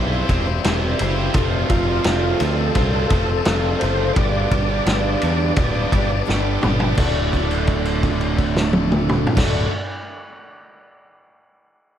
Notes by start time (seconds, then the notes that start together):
Already playing: B1 C3 G3 C4 E4 G4 C5
0.11 C4 E4 G4 C5
0.28 E1 G3 C4 E4 G4 C5, kick, ride
0.46 C4 E4 G4 C5, muted overdriven electric guitar stroke
0.63 E1 C3 E3 G3 C4 E4 G4 C5, snare, ride
0.82 C4 E4 C5
0.98 F#1 G3 C4 E4 G4 C5, ride
1.15 C4 E4 G4 C5
1.33 F1 F2 C3 F3 A3 C4 F4 C5, kick, ride
1.38 A4
1.52 C4 F4 A4
1.68 F1 F3 A3 C4 F4, kick, ride
1.86 F3 A3 C4 F4 A4
2.04 F1 F2 C3 F3 A3 C4 F4 A4, snare, ride
2.40 D2 F3 A3 C4 F4 A4, ride
2.57 F3 A3 C4 F4, muted overdriven electric guitar stroke
2.75 C2 F3 A3 C4 F4, kick, ride
2.92 F3 A3 C4 F4 A4
3.08 F1 F3 A3 C4 F4 A4, kick, ride
3.13 A4
3.27 F3 A3 C4 F4 A4, muted overdriven electric guitar stroke
3.45 F1 F2 C3 F3 A3 C4 F4 A4, snare, ride
3.63 C4 F4 A4
3.80 F#1 F3 A3 C4 F4 C5, ride
3.85 A4
3.98 F3 A3 C4 F4
4.14 G1 G2 D3 G3 B3 D4 G4 D5, kick, ride
4.18 G4 B4
4.33 D4 G4 B4
4.50 G1 G3 B3 D4 G4, kick, ride
4.68 G3 B3 D4 G4 B4
4.86 G1 G2 D3 G3 B3 D4 G4 B4, snare, ride
5.21 E2 G3 B3 D4 G4 B4, ride
5.40 G3 B3 D4 G4, muted overdriven electric guitar stroke
5.56 D1 G3 B3 D4 G4, kick, ride
5.74 G3 B3 D4 G4 B4
5.92 G1 G3 B3 D4 G4 B4, kick, ride
6.10 G3 B3 D4 G4 B4, muted overdriven electric guitar stroke
6.27 G1 G2 D3 G3 B3 D4 G4 B4, snare
6.63 G1 G3 B3 D4 G4 B4, mid tom
6.80 G3 B3 D4 G4, floor tom
6.95 D1 D2 A2 D3 A3 D4 F#4 D5, kick, crash
6.99 D3 A3 D4 F#4
7.04 A4
7.33 kick, crash
7.51 crash
7.67 kick, crash
7.85 crash
8.03 kick, crash
8.21 crash
8.38 kick, crash
8.57 snare
8.73 high tom
8.92 mid tom
9.09 mid tom
9.27 floor tom
9.35 D1 D2 A2 D3 A3 D4 F#4 D5, kick, snare, crash
9.39 A3 D4 F#4
9.44 A4